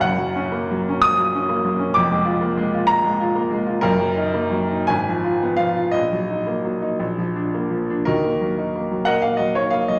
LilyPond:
<<
  \new Staff \with { instrumentName = "Grand piano" } { \time 6/8 \key ees \minor \tempo 4. = 60 ges''4. ees'''4. | d'''4. bes''4. | bes'4. aes''4 f''8 | ees''4. r4. |
<ees' ges' bes'>4. <bes' ees'' ges''>16 f''16 ees''16 des''16 f''16 ees''16 | }
  \new Staff \with { instrumentName = "Grand piano" } { \clef bass \time 6/8 \key ees \minor <ges,, ges,>16 ges16 des'16 bes16 ges16 des'8 ges16 des'16 bes16 ges16 des'16 | <f,, f,>16 aes16 f'16 bes16 aes16 f'8 aes16 f'16 bes16 aes16 f'16 | <ges,, ges,>16 ges16 ees'16 bes16 ges16 ees'16 aes,,16 f16 f'16 ces'16 f16 f'16 | bes,,16 ges16 ees'16 bes16 ges16 ees'16 bes,,16 f16 d'16 bes16 f16 d'16 |
ees,16 bes16 ges16 ees'16 bes16 ges16 bes,16 bes16 ges16 ees'16 bes16 ges16 | }
>>